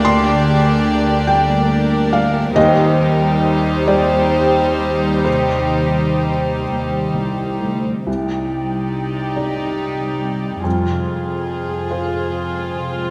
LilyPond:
<<
  \new Staff \with { instrumentName = "Felt piano" } { \time 6/8 \key c \minor \tempo 4. = 46 c'''4. g''4 f''8 | ees''4. d''4. | c''4. r4. | r2. |
r2. | }
  \new Staff \with { instrumentName = "Felt piano" } { \time 6/8 \key c \minor bes2. | ees,4. g4.~ | g2. | c,4. <ees' d''>4. |
f,4. <f' c''>4. | }
  \new Staff \with { instrumentName = "Violin section" } { \time 6/8 \key c \minor g'8 aes'8 g'8 bes'4. | c''8 bes'8 c''2 | g'2~ g'16 r8. | d''2. |
c''2. | }
  \new Staff \with { instrumentName = "Violin section" } { \time 6/8 \key c \minor <g' d''>2. | <g' c''>2.~ | <g' c''>2~ <g' c''>8. r16 | g'2. |
aes'2. | }
  \new Staff \with { instrumentName = "Viola section" } { \time 6/8 \key c \minor <bes d'>2. | <g ees'>2.~ | <g ees'>2~ <g ees'>8. r16 | ees'2. |
f'2. | }
  \new Staff \with { instrumentName = "Harp" } { \time 6/8 \key c \minor <d bes d'''>4. g4 g8 | ees'16 c''16 g8. c''16 g4 g8 | c8 g8. c''16 g16 c''8 c''16 g16 c''16 | c16 c'16 g16 ees'16 d''16 g'16 g''16 g'16 d''16 g16 c'16 g16 |
f,16 c16 aes16 f'16 c''16 aes'16 f''16 aes'16 c''16 aes16 c16 aes16 | }
  \new Staff \with { instrumentName = "Cello section" } { \clef bass \time 6/8 \key c \minor d,2. | ees,2.~ | ees,4. ees,8 c,8 d,8 | c2. |
f,2. | }
>>